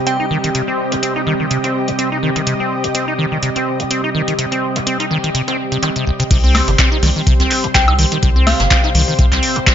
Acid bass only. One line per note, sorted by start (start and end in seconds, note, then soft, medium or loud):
0.07 0.18 C4 medium
0.20 0.26 D#4 medium
0.31 0.38 D#3 loud
0.44 0.50 D#3 medium
0.55 0.62 C3 medium
0.68 0.93 C4 medium
0.92 0.96 C2 medium
1.03 1.14 C4 medium
1.16 1.22 D#4 medium
1.27 1.34 D#3 medium
1.40 1.46 D#3 medium
1.51 1.58 C3 medium
1.64 1.90 C4 medium
1.88 1.92 C2 medium
1.99 2.10 C4 medium
2.12 2.18 D#4 medium
2.23 2.30 D#3 medium
2.36 2.42 D#3 medium
2.47 2.54 C3 medium
2.60 2.85 C4 medium
2.84 2.87 C2 medium
2.95 3.06 C4 medium
3.08 3.14 D#4 medium
3.19 3.26 D#3 loud
3.32 3.38 D#3 medium
3.43 3.50 C3 medium
3.56 3.81 C4 medium
3.80 3.83 C2 medium
3.91 4.02 C4 medium
4.04 4.10 D#4 medium
4.15 4.22 D#3 loud
4.28 4.34 D#3 medium
4.38 4.46 C3 medium
4.52 4.77 C4 medium
4.76 4.80 C2 medium
4.87 4.98 C4 medium
5.00 5.06 D#4 medium
5.11 5.18 D#3 loud
5.24 5.30 D#3 medium
5.35 5.42 C3 medium
5.48 5.57 C4 medium
5.72 5.78 C3 medium
5.83 5.90 D#3 medium
5.96 6.05 C3 medium
6.07 6.11 C2 medium
6.20 6.23 C3 loud
6.31 6.38 C3 medium
6.44 6.69 C4 medium
6.68 6.71 C2 medium
6.79 6.90 C4 medium
6.92 6.98 D#4 medium
7.03 7.10 D#3 loud
7.16 7.22 D#3 medium
7.27 7.34 C3 medium
7.40 7.65 C4 medium
7.64 7.67 C2 medium
7.75 7.86 C4 medium
7.88 7.94 D#4 medium
7.99 8.06 D#3 loud
8.12 8.18 D#3 medium
8.23 8.30 C3 medium
8.36 8.61 C4 medium
8.60 8.63 C2 medium
8.71 8.82 C4 medium
8.84 8.90 D#4 medium
8.95 9.02 D#3 loud
9.08 9.14 D#3 medium
9.19 9.26 C3 medium
9.32 9.57 C4 medium
9.56 9.60 C2 medium
9.67 9.75 C4 medium